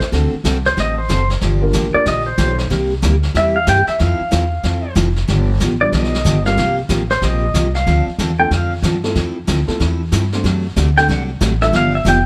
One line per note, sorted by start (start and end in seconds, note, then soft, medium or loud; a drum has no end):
0.00 muted upright bass stroke soft
0.00 kick medium
0.00 snare soft
0.12 0.31 D2 medium
0.12 0.34 D3 medium
0.12 0.31 A3 medium
0.12 0.34 A3 medium
0.12 0.31 C4 medium
0.12 0.34 C4 medium
0.12 0.31 D4 medium
0.12 0.31 F#4 medium
0.12 0.34 F#4 medium
0.12 0.31 A4 medium
0.12 0.34 A4 medium
0.12 brush sweep medium
0.12 snare soft
0.33 muted upright bass stroke soft
0.44 0.76 C2 medium
0.44 0.56 D3 medium
0.44 0.56 A3 medium
0.44 0.57 C4 medium
0.44 0.57 F#4 medium
0.44 0.57 A4 medium
0.44 snare medium
0.44 hi-hat pedal soft
0.65 0.77 C5 medium
0.65 snare soft
0.77 1.08 A1 medium
0.77 0.98 D3 medium
0.77 0.98 A3 soft
0.77 0.98 C4 medium
0.77 0.98 F#4 medium
0.77 0.99 A4 soft
0.77 0.98 D#5 loud
0.77 brush sweep soft
0.77 snare soft
0.98 1.28 C5 medium
1.09 1.41 F#1 medium
1.09 1.21 D3 medium
1.09 1.21 A3 medium
1.09 1.21 C4 medium
1.09 1.21 F#4 medium
1.09 1.21 A4 medium
1.09 snare medium
1.09 hi-hat pedal medium
1.30 snare soft
1.41 1.73 G1 medium
1.41 1.63 D3 medium
1.41 1.63 F3 medium
1.41 1.63 A#3 medium
1.41 1.63 D4 medium
1.41 1.63 G4 medium
1.41 brush sweep soft
1.41 snare soft
1.61 1.92 A#3 medium
1.61 1.92 D4 medium
1.61 1.92 F4 medium
1.61 1.92 G4 medium
1.61 1.92 A#4 medium
1.73 1.93 A1 medium
1.73 1.85 D3 medium
1.73 1.85 F3 medium
1.73 1.85 A#3 medium
1.73 1.86 D4 medium
1.73 1.86 G4 medium
1.73 snare medium
1.73 hi-hat pedal medium
1.93 2.04 A#3 medium
1.93 2.05 D4 medium
1.93 2.05 F4 medium
1.93 2.05 G4 medium
1.93 2.05 A#4 medium
1.93 2.06 D5 medium
1.93 muted upright bass stroke soft
2.06 2.37 A#1 medium
2.06 2.27 D3 medium
2.06 2.27 F3 medium
2.06 2.27 A#3 soft
2.06 2.28 D4 medium
2.06 2.28 G4 medium
2.06 2.27 D#5 medium
2.06 brush sweep medium
2.06 snare soft
2.26 2.56 C5 medium
2.38 2.69 B1 loud
2.38 2.49 D3 medium
2.38 2.50 F3 medium
2.38 2.50 A#3 medium
2.38 2.50 D4 medium
2.38 2.50 G4 medium
2.38 snare medium
2.38 hi-hat pedal medium
2.58 snare soft
2.70 3.02 C2 medium
2.70 2.91 C3 medium
2.70 2.91 G3 medium
2.70 2.91 A#3 medium
2.70 2.92 E4 medium
2.70 2.92 G4 medium
2.70 brush sweep soft
2.70 snare soft
3.02 3.34 D2 medium
3.02 3.14 C3 medium
3.02 3.14 G3 medium
3.02 3.14 A#3 medium
3.02 3.14 E4 medium
3.02 3.14 G4 medium
3.02 snare medium
3.02 hi-hat pedal medium
3.23 snare soft
3.34 3.66 E2 medium
3.34 3.56 C3 soft
3.34 3.56 G3 medium
3.34 3.56 A#3 medium
3.34 3.56 E4 medium
3.34 3.56 G4 medium
3.34 3.56 E5 medium
3.34 brush sweep soft
3.34 snare soft
3.56 3.67 F5 medium
3.67 3.86 G2 medium
3.67 3.78 C3 medium
3.67 3.79 G3 medium
3.67 3.79 A#3 medium
3.67 3.79 E4 medium
3.67 3.79 G4 medium
3.67 3.88 G5 medium
3.67 snare medium
3.67 hi-hat pedal medium
3.87 3.99 E5 medium
3.87 muted upright bass stroke soft
3.87 snare soft
3.99 4.19 F2 medium
3.99 4.20 F3 medium
3.99 4.21 C4 medium
3.99 4.21 E4 medium
3.99 4.21 A4 medium
3.99 4.93 F5 medium
3.99 brush sweep soft
3.99 snare soft
4.20 muted upright bass stroke soft
4.31 4.63 E2 medium
4.31 4.43 F3 medium
4.31 4.43 C4 medium
4.31 4.43 E4 medium
4.31 4.43 A4 medium
4.31 snare medium
4.31 hi-hat pedal soft
4.63 4.95 F2 medium
4.63 4.85 F3 medium
4.63 4.85 C4 medium
4.63 4.85 E4 medium
4.63 4.85 A4 medium
4.63 brush sweep soft
4.63 snare soft
4.95 5.27 F1 loud
4.95 5.07 F3 medium
4.95 5.07 C4 medium
4.95 5.07 E4 medium
4.95 5.08 A4 medium
4.95 snare medium
4.95 hi-hat pedal medium
5.16 snare soft
5.28 5.60 G1 medium
5.28 5.49 D3 medium
5.28 5.49 F3 medium
5.28 5.49 B3 medium
5.28 5.49 D4 medium
5.28 5.50 G4 medium
5.28 brush sweep medium
5.28 snare soft
5.60 5.92 A1 medium
5.60 5.72 D3 medium
5.60 5.72 F3 medium
5.60 5.72 B3 medium
5.60 5.72 D4 medium
5.60 5.72 G4 medium
5.60 snare medium
5.60 hi-hat pedal medium
5.81 5.92 G3 medium
5.81 5.92 B3 medium
5.81 5.92 D4 medium
5.81 5.92 F4 medium
5.81 5.92 G4 medium
5.81 5.93 D5 medium
5.92 6.24 B1 medium
5.92 6.14 D3 medium
5.92 6.14 F3 medium
5.92 6.14 B3 medium
5.92 6.14 D4 medium
5.92 6.14 G4 medium
5.92 6.43 D#5 medium
5.92 brush sweep soft
5.92 snare soft
6.04 snare soft
6.14 snare soft
6.24 6.56 G1 medium
6.24 6.36 D3 medium
6.24 6.36 F3 medium
6.24 6.37 B3 medium
6.24 6.37 D4 medium
6.24 6.37 G4 medium
6.24 snare medium
6.24 hi-hat pedal medium
6.45 6.56 G3 medium
6.45 6.56 A#3 medium
6.45 6.56 C4 medium
6.45 6.56 F4 medium
6.45 6.57 G4 medium
6.45 6.76 F5 loud
6.45 snare soft
6.57 6.89 C2 medium
6.57 6.78 C3 medium
6.57 6.79 F3 medium
6.57 6.79 A#3 medium
6.57 6.79 F4 medium
6.57 6.79 G4 medium
6.57 brush sweep medium
6.57 snare soft
6.89 7.21 A1 medium
6.89 7.01 C3 medium
6.89 7.01 F3 medium
6.89 7.01 A#3 medium
6.89 7.01 F4 medium
6.89 7.01 G4 medium
6.89 snare medium
6.89 hi-hat pedal medium
7.10 7.22 C5 medium
7.10 snare soft
7.22 7.53 A#1 medium
7.22 7.43 C3 medium
7.22 7.43 F3 medium
7.22 7.44 A#3 medium
7.22 7.44 F4 medium
7.22 7.44 G4 medium
7.22 7.72 D#5 medium
7.22 brush sweep medium
7.22 snare soft
7.54 7.85 C2 medium
7.54 7.66 C3 medium
7.54 7.66 F3 medium
7.54 7.66 A#3 medium
7.54 7.66 F4 medium
7.54 7.66 G4 medium
7.54 snare medium
7.54 hi-hat pedal medium
7.74 8.05 F5 medium
7.74 snare soft
7.87 8.05 D2 medium
7.87 8.07 D3 medium
7.87 8.08 F3 medium
7.87 8.08 C4 medium
7.87 8.08 D4 medium
7.87 8.08 A4 medium
7.87 brush sweep medium
7.87 snare soft
8.07 muted upright bass stroke soft
8.19 8.50 E2 medium
8.19 8.30 D3 medium
8.19 8.30 F3 medium
8.19 8.30 C4 medium
8.19 8.31 D4 medium
8.19 8.31 A4 medium
8.19 snare medium
8.19 hi-hat pedal soft
8.39 8.50 A3 medium
8.39 8.50 C4 medium
8.39 8.50 D4 medium
8.39 8.50 F4 medium
8.39 8.50 A4 medium
8.39 8.51 G5 medium
8.51 8.82 F2 medium
8.51 8.72 D3 medium
8.51 8.72 F3 medium
8.51 8.72 C4 medium
8.51 8.73 D4 medium
8.51 8.73 A4 medium
8.51 8.72 F5 medium
8.51 brush sweep medium
8.51 snare soft
8.82 9.14 G2 loud
8.82 8.95 D3 medium
8.82 8.95 F3 medium
8.82 8.95 C4 medium
8.82 8.95 D4 medium
8.82 8.96 A4 medium
8.82 snare medium
8.82 hi-hat pedal medium
9.04 9.14 A3 medium
9.04 9.14 C4 medium
9.04 9.14 E4 medium
9.04 9.14 F4 medium
9.04 9.14 A4 medium
9.04 snare soft
9.15 9.47 F2 medium
9.15 9.36 F3 medium
9.15 9.37 C4 medium
9.15 9.37 E4 medium
9.15 9.37 A4 medium
9.15 brush sweep medium
9.15 snare soft
9.47 9.67 D2 medium
9.47 9.59 F3 medium
9.47 9.59 C4 medium
9.47 9.59 E4 medium
9.47 9.59 A4 medium
9.47 snare medium
9.47 hi-hat pedal medium
9.67 9.78 A3 medium
9.67 9.78 C4 medium
9.67 9.79 E4 medium
9.67 9.78 F4 medium
9.67 9.79 A4 medium
9.67 muted upright bass stroke soft
9.67 snare soft
9.80 10.11 E2 medium
9.80 10.01 F3 medium
9.80 10.01 C4 medium
9.80 10.01 E4 medium
9.80 10.01 A4 medium
9.80 brush sweep soft
9.80 snare soft
10.12 10.43 G2 medium
10.12 10.23 F3 medium
10.12 10.24 C4 medium
10.12 10.24 E4 medium
10.12 10.24 A4 medium
10.12 snare medium
10.12 hi-hat pedal medium
10.32 10.43 A3 medium
10.32 10.43 C4 medium
10.32 10.44 D4 medium
10.32 10.44 F#4 medium
10.32 10.44 C5 medium
10.32 snare soft
10.44 10.75 F#2 medium
10.44 10.65 C3 medium
10.44 10.65 F#3 medium
10.44 10.65 A3 medium
10.44 10.66 D4 medium
10.44 10.66 F#4 medium
10.44 brush sweep soft
10.44 snare soft
10.76 11.08 D2 medium
10.76 10.88 C3 medium
10.76 10.88 F#3 medium
10.76 10.88 A3 medium
10.76 10.88 D4 medium
10.76 10.89 F#4 medium
10.76 snare medium
10.76 hi-hat pedal medium
10.97 11.08 A3 medium
10.97 11.08 C4 medium
10.97 11.08 D4 medium
10.97 11.08 F#4 medium
10.97 11.08 A4 medium
10.97 11.09 G5 loud
10.97 snare soft
11.08 11.40 C2 medium
11.08 11.29 C3 medium
11.08 11.30 F#3 medium
11.08 11.30 A3 medium
11.08 11.30 D4 medium
11.08 11.30 F#4 medium
11.08 11.22 F#5 medium
11.08 brush sweep soft
11.08 snare soft
11.41 11.72 A1 medium
11.41 11.52 C3 medium
11.41 11.52 F#3 medium
11.41 11.52 A3 medium
11.41 11.53 D4 medium
11.41 11.53 F#4 medium
11.41 snare medium
11.41 hi-hat pedal medium
11.61 11.72 G3 medium
11.61 11.72 B3 medium
11.61 11.72 D4 medium
11.61 11.72 F4 medium
11.61 11.72 A4 medium
11.61 11.73 E5 loud
11.61 snare soft
11.73 12.04 G1 medium
11.73 11.94 D3 medium
11.73 11.94 F3 medium
11.73 11.94 B3 medium
11.73 11.94 D4 medium
11.73 11.94 G4 medium
11.73 11.94 F5 loud
11.73 brush sweep medium
11.73 snare soft
11.95 12.06 E5 loud
12.05 12.26 F1 medium
12.05 12.16 D3 medium
12.05 12.17 F3 medium
12.05 12.17 B3 medium
12.05 12.17 D4 medium
12.05 12.17 G4 medium
12.05 12.26 G5 medium
12.05 snare medium
12.05 hi-hat pedal medium